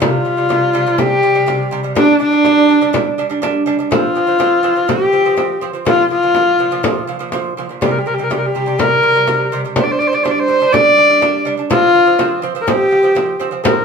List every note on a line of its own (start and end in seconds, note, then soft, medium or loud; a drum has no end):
0.00 0.20 C3 medium
0.00 0.21 G3 loud
0.00 1.00 F4 medium
0.00 frame drum medium
0.26 0.36 G3 medium
0.26 frame drum soft
0.37 0.47 C3 medium
0.37 0.48 G3 medium
0.49 0.69 C3 medium
0.49 0.70 G3 medium
0.49 frame drum medium
0.73 0.84 C3 medium
0.73 0.84 G3 loud
0.73 frame drum soft
0.86 0.96 C3 medium
0.86 0.97 G3 medium
0.98 1.18 C3 medium
0.98 1.19 G3 loud
0.98 1.72 G4 loud
0.98 frame drum medium
1.23 1.33 C3 medium
1.23 1.33 G3 medium
1.35 1.45 C3 medium
1.35 1.45 G3 medium
1.47 1.67 C3 medium
1.47 1.67 G3 medium
1.47 frame drum medium
1.71 1.81 C3 medium
1.71 1.82 G3 loud
1.71 frame drum soft
1.83 1.94 C3 medium
1.83 1.94 G3 medium
1.95 2.15 G3 medium
1.95 2.16 D4 loud
1.95 2.20 D4 loud
1.95 frame drum medium
2.20 2.30 G3 medium
2.20 2.31 D4 medium
2.20 3.15 D4 loud
2.20 frame drum soft
2.32 2.42 G3 medium
2.32 2.43 D4 medium
2.45 2.65 G3 medium
2.45 2.65 D4 loud
2.45 frame drum medium
2.69 2.79 G3 medium
2.69 2.80 D4 medium
2.81 2.91 G3 medium
2.81 2.92 D4 medium
2.93 3.13 G3 loud
2.93 3.13 D4 loud
2.93 frame drum medium
3.18 3.28 G3 medium
3.18 3.28 D4 loud
3.30 3.40 G3 medium
3.30 3.40 D4 medium
3.42 3.62 G3 loud
3.42 3.62 D4 loud
3.42 frame drum medium
3.66 3.76 G3 medium
3.66 3.77 D4 loud
3.66 frame drum soft
3.79 3.89 G3 medium
3.79 3.89 D4 medium
3.91 4.11 F3 medium
3.91 4.11 C4 loud
3.91 4.90 F4 medium
3.91 frame drum medium
4.15 4.25 F3 medium
4.15 4.26 C4 medium
4.15 frame drum soft
4.27 4.37 F3 medium
4.27 4.38 C4 medium
4.39 4.59 F3 medium
4.39 4.60 C4 loud
4.39 frame drum medium
4.63 4.74 F3 medium
4.63 4.74 C4 loud
4.63 frame drum soft
4.76 4.86 F3 medium
4.76 4.87 C4 medium
4.88 5.08 F3 medium
4.88 5.08 C4 loud
4.88 5.62 G4 loud
4.88 frame drum medium
5.12 5.23 F3 medium
5.12 5.23 C4 medium
5.25 5.35 F3 medium
5.25 5.36 C4 medium
5.37 5.57 F3 medium
5.37 5.57 C4 medium
5.37 frame drum medium
5.61 5.71 F3 medium
5.61 5.72 C4 medium
5.61 frame drum soft
5.73 5.84 F3 medium
5.73 5.84 C4 medium
5.85 6.05 A#2 medium
5.85 6.06 F3 loud
5.85 6.10 F4 loud
5.85 frame drum medium
6.10 6.20 A#2 medium
6.10 6.21 F3 medium
6.10 7.04 F4 loud
6.10 frame drum soft
6.23 6.33 A#2 medium
6.23 6.33 F3 medium
6.35 6.54 A#2 medium
6.35 6.55 F3 medium
6.35 frame drum medium
6.59 6.69 A#2 medium
6.59 6.70 F3 medium
6.59 frame drum soft
6.71 6.81 A#2 medium
6.71 6.82 F3 medium
6.83 7.03 A#2 loud
6.83 7.04 F3 loud
6.83 frame drum medium
7.07 7.18 A#2 medium
7.07 7.18 F3 medium
7.19 7.30 A#2 medium
7.19 7.30 F3 medium
7.32 7.52 A#2 medium
7.32 7.52 F3 loud
7.32 frame drum medium
7.57 7.67 A#2 medium
7.57 7.67 F3 medium
7.57 frame drum soft
7.69 7.79 A#2 medium
7.69 7.80 F3 medium
7.81 8.01 C3 medium
7.81 8.01 G3 loud
7.81 7.92 G4 medium
7.81 frame drum medium
7.90 8.00 A#4 medium
7.99 8.08 G4 medium
8.06 8.15 C3 medium
8.06 8.16 G3 medium
8.06 8.16 A#4 medium
8.06 frame drum soft
8.14 8.25 G4 medium
8.18 8.28 C3 medium
8.18 8.28 G3 medium
8.23 8.33 A#4 medium
8.30 8.49 C3 medium
8.30 8.50 G3 medium
8.30 8.40 G4 medium
8.30 frame drum medium
8.38 8.48 A#4 medium
8.46 8.81 G4 medium
8.55 8.64 C3 medium
8.55 8.65 G3 medium
8.55 frame drum soft
8.66 8.76 C3 medium
8.66 8.77 G3 medium
8.79 8.98 C3 medium
8.79 8.98 G3 medium
8.79 9.52 A#4 loud
8.79 frame drum medium
9.03 9.12 C3 medium
9.03 9.13 G3 medium
9.15 9.25 C3 medium
9.15 9.26 G3 medium
9.28 9.47 C3 medium
9.28 9.47 G3 medium
9.28 frame drum medium
9.52 9.62 C3 medium
9.52 9.62 G3 loud
9.52 frame drum soft
9.65 9.74 C3 medium
9.65 9.74 G3 medium
9.76 9.95 G3 medium
9.76 9.96 D4 loud
9.76 9.85 C5 medium
9.76 frame drum medium
9.83 9.93 D5 medium
9.91 10.00 C5 medium
9.99 10.10 G3 medium
9.99 10.11 D4 medium
9.99 10.09 D5 medium
9.99 frame drum soft
10.07 10.16 C5 medium
10.12 10.22 G3 medium
10.12 10.22 D4 medium
10.12 10.25 D5 medium
10.23 10.44 G3 medium
10.23 10.44 D4 loud
10.23 10.32 C5 medium
10.23 frame drum medium
10.31 10.41 D5 medium
10.39 10.74 C5 medium
10.48 10.58 G3 medium
10.48 10.59 D4 medium
10.48 frame drum soft
10.60 10.70 G3 medium
10.60 10.71 D4 medium
10.73 10.92 G3 medium
10.73 10.93 D4 medium
10.73 11.46 D5 loud
10.73 frame drum medium
10.97 11.07 G3 medium
10.97 11.07 D4 medium
11.10 11.19 G3 medium
11.10 11.20 D4 medium
11.21 11.41 G3 medium
11.21 11.41 D4 loud
11.21 frame drum medium
11.45 11.55 G3 medium
11.45 11.56 D4 loud
11.45 frame drum soft
11.57 11.67 G3 medium
11.57 11.68 D4 medium
11.70 11.89 F3 medium
11.70 11.90 C4 loud
11.70 12.39 F4 loud
11.70 frame drum medium
11.94 12.04 F3 medium
11.94 12.05 C4 medium
11.94 frame drum soft
12.06 12.16 F3 medium
12.06 12.17 C4 medium
12.19 12.38 F3 medium
12.19 12.39 C4 loud
12.19 frame drum medium
12.42 12.52 F3 medium
12.42 12.53 C4 loud
12.42 frame drum soft
12.55 12.65 F3 medium
12.55 12.65 C4 medium
12.61 12.70 A#4 medium
12.67 12.87 F3 medium
12.67 12.87 C4 loud
12.67 13.41 G4 loud
12.67 frame drum medium
12.91 13.01 F3 medium
12.91 13.02 C4 medium
13.03 13.13 F3 medium
13.03 13.13 C4 medium
13.15 13.35 F3 medium
13.15 13.35 C4 medium
13.15 frame drum medium
13.40 13.49 F3 medium
13.40 13.50 C4 medium
13.40 frame drum soft
13.51 13.61 F3 medium
13.51 13.62 C4 medium
13.64 13.83 F3 medium
13.64 13.84 C4 loud
13.64 13.85 A#4 loud
13.64 frame drum medium